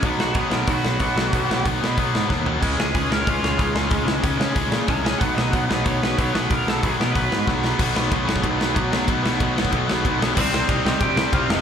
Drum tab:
CC |----------------|----------------|x---------------|----------------|
RD |----------------|----------------|----------------|----------------|
HH |o---o---o---o---|o---o---o-------|----o---o---o---|o---o---o---o---|
SD |--o---o---o---o-|--o---o---o-o---|--o---o---o---o-|--o---o---o---o-|
FT |----------------|--------------o-|----------------|----------------|
BD |o---o---o---o---|o---o---o---o---|o---o---o---o---|o---o---o---o---|

CC |----------------|----------------|x---------------|----------------|
RD |----------------|----------------|----x---x---x---|x---x---x---x---|
HH |o---o---o---o---|o---o---o-------|----------------|----------------|
SD |--o---o---o---o-|--o---o---o-o-o-|--o---o---o---o-|--o---o---o---o-|
FT |----------------|----------------|----------------|----------------|
BD |o---o---o---o---|o---o---o---o---|o---o--oo---o---|o---o--oo---o---|

CC |x---------------|
RD |----x---x---x---|
HH |----------------|
SD |--o---o---o---o-|
FT |----------------|
BD |o---o---o---o---|